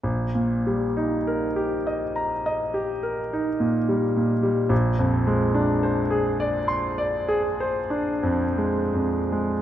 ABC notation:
X:1
M:4/4
L:1/16
Q:1/4=51
K:Eb
V:1 name="Grand piano"
B,,, B,, G, E B G e b e G B E B,, G, B,, G, | B,,, F,, A, D c A d c' d A c D F,, A, F,, A, |]